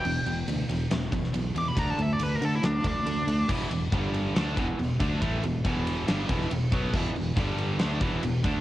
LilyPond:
<<
  \new Staff \with { instrumentName = "Lead electric guitar" } { \time 4/4 \key e \minor \tempo 4 = 139 g''4 r2 r8 d'''16 b''16 | ais''16 a''16 e''16 d''16 b'16 ais'16 a'16 e'16 d'8 d'4. | r1 | r1 |
r1 | }
  \new Staff \with { instrumentName = "Distorted electric guitar" } { \clef bass \time 4/4 \key e \minor <e, b,>8 <e, b,>8 <e, b,>8 <e, b,>8 <e, b,>8 <e, b,>8 <e, b,>8 <e, b,>8 | <d a d'>8 <d a>8 <d a>8 <d a>8 <d a>8 <d a>8 <d a>8 <d a>8 | <e, b, e>8 <e, b,>8 <g, d g>4 <d a d'>8 <e, b, e>8 <e, b,>8 <d a d'>8 | <a, e a>8 <e, b,>8 <e, b, e>4 <g, d g>8 <e, b, e>8 <e, b,>8 <b, fis b>8 |
<e, b, e>8 <e, b,>8 <g, d g>4 <d a d'>8 <e, b, e>8 <e, b,>8 <d a d'>8 | }
  \new Staff \with { instrumentName = "Distorted electric guitar" } { \clef bass \time 4/4 \key e \minor <e, b,>8 <e, b,>8 <e, b,>8 <e, b,>8 <e, b,>8 <e, b,>8 <e, b,>8 <e, b,>8 | <d a d'>8 <d a>8 <d a>8 <d a>8 <d a>8 <d a>8 <d a>8 <d a>8 | <e, b, e>8 <e, b,>8 <g, d g>4 <d a d'>8 <e, b, e>8 <e, b,>8 <d a d'>8 | <a, e a>8 <e, b,>8 <e, b, e>4 <g, d g>8 <e, b, e>8 <e, b,>8 <b, fis b>8 |
<e, b, e>8 <e, b,>8 <g, d g>4 <d a d'>8 <e, b, e>8 <e, b,>8 <d a d'>8 | }
  \new Staff \with { instrumentName = "Distorted electric guitar" } { \clef bass \time 4/4 \key e \minor r1 | r1 | <e, b, e>8 <e, b,>8 <g, d g>4 <d a d'>8 <e, b, e>8 <e, b,>8 <d a d'>8 | <a, e a>8 <e, b,>8 <e, b, e>4 <g, d g>8 <e, b, e>8 <e, b,>8 <b, fis b>8 |
<e, b, e>8 <e, b,>8 <g, d g>4 <d a d'>8 <e, b, e>8 <e, b,>8 <d a d'>8 | }
  \new Staff \with { instrumentName = "Fingered electric bass" } { \clef bass \time 4/4 \key e \minor e,,8 e,,8 d,8 e,,8 e,,8 e,,8 b,,8 e,8 | d,8 d,8 d,8 d8 d,8 d,8 d,8 d,8 | e,,8 e,,8 g,,4 d,8 e,,8 e,,8 d,8 | a,,8 e,,8 e,,4 g,,8 e,,8 e,,8 b,,8 |
e,,8 e,,8 g,,4 d,8 e,,8 e,,8 d,8 | }
  \new DrumStaff \with { instrumentName = "Drums" } \drummode { \time 4/4 cymc8 cymr8 cymr8 cymr8 <cymr sn>8 <bd cymr>16 sn16 cymr8 cymr8 | <bd cymr>8 cymr8 cymr8 cymr8 <cymr sn>8 <bd cymr>8 cymr8 cymr8 | <cymc bd>8 cymr8 <bd cymr>8 cymr8 <cymr sn>8 <bd cymr>16 sn16 cymr8 <bd cymr>8 | <bd cymr>8 cymr8 <bd cymr>8 cymr8 <cymr sn>8 <bd cymr>16 sn16 cymr8 <bd cymr>8 |
<cymc bd>8 cymr8 <bd cymr>8 cymr8 <cymr sn>8 <bd cymr>8 cymr8 <bd cymr>8 | }
>>